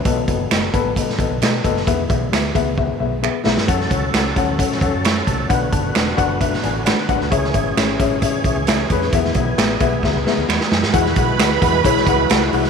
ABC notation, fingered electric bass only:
X:1
M:4/4
L:1/16
Q:1/4=132
K:Emix
V:1 name="Fingered electric bass" clef=bass
B,,,2 F,,,2 F,,,2 G,,,3 z A,,, B,,, B,,2 F,,,2 | E,,2 B,,,2 D,,2 C,,4 B,,,3 z B,,, =G,, | F,,2 C,,2 C,,2 D,,3 z E,, F,,3 =C,,2 | B,,,2 F,,,2 E,,,2 F,,,4 A,,,3 z G,,, D,, |
C,,2 G,,,2 G,,,2 A,,,3 z B,,, C,,3 ^E,,2 | E,,2 B,,,2 A,,,2 B,,,2 D,, C,, z D,, E,, z F,, G,, | E,,2 B,,,2 D,,2 E,,2 B,,,2 C,,2 C,,2 =C,,2 |]